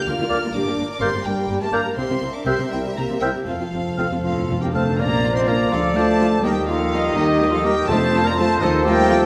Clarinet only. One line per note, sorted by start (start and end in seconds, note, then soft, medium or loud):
0.31 0.39 A#4 medium
1.01 1.09 A#4 medium
1.74 1.82 A#4 medium
2.47 2.55 A#4 medium
3.22 3.30 A#4 medium
3.99 4.08 A4 medium
4.24 4.63 F4 medium
4.62 4.75 G4 medium
4.74 5.01 A4 medium
4.99 5.36 A#4 medium
5.34 5.49 C5 medium
5.48 5.70 A#4 medium
5.71 5.82 F4 medium
5.96 6.46 A4 medium
6.44 6.68 G4 medium
6.68 7.15 F4 medium
7.16 7.50 D#4 medium
7.51 7.57 F4 medium
7.64 7.89 G4 loud
7.88 8.23 A4 medium
8.24 8.30 A#4 medium
8.37 8.60 A4 medium
8.61 8.86 D#4 loud
8.84 9.26 G4 loud